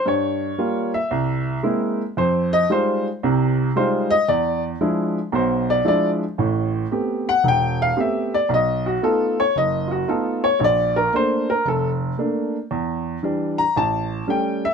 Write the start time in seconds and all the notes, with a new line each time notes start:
0.06 G2 C#5
0.58 G3 A#3 F4
0.94 E5
1.11 C2
1.63 G#3 A#3 C4 E4
2.17 F2 C5
2.53 D#5
2.70 G3 G#3 D#4 F4 C5
3.23 C2 C3
3.76 G3 G#3 D#4 F4 C5
4.11 D#5
4.28 E2 D5
4.81 F3 G#3 D4 E4
5.32 B1 B2 C5
5.70 D5
5.85 F3 G#3 D4 E4 D5
6.38 A1 A2
6.91 A3 B3 C4 G4
7.29 F#5
7.44 E1
7.48 G5
7.82 F5
7.96 A3 B3 C4 G4 E5
8.34 D5
8.49 B1
8.54 D#5
8.86 F#4
9.02 A3 B3 D#4 F4 A4
9.40 C#5
9.56 F#1 D#5
9.87 F4
9.91 F#4
10.08 A3 B3 D#4 F4 A4
10.44 C#5
10.60 A#1 C#5
10.64 D5
10.96 A#4
11.13 A3 A#3 D4 C5
11.50 A#4
11.65 F1 A4
12.18 A3 A#3 D4
12.71 E2
13.23 E3 G3 D4
13.58 A#5
13.76 A1 A5
14.27 G3 A3 C#4 G5
14.65 E5